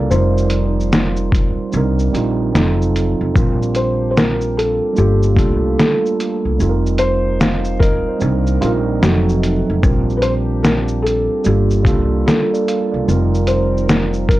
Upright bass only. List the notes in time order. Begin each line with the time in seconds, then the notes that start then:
0.11 F1
1.74 C2
2.14 A#1
2.55 F1
3.21 F1
3.36 A#1
4.98 G1
5.37 C2
6.45 C2
6.60 F1
8.22 C2
8.62 A#1
9.03 F1
9.70 F1
9.84 A#1
11.46 G1
11.85 C2
12.94 C2
13.08 F1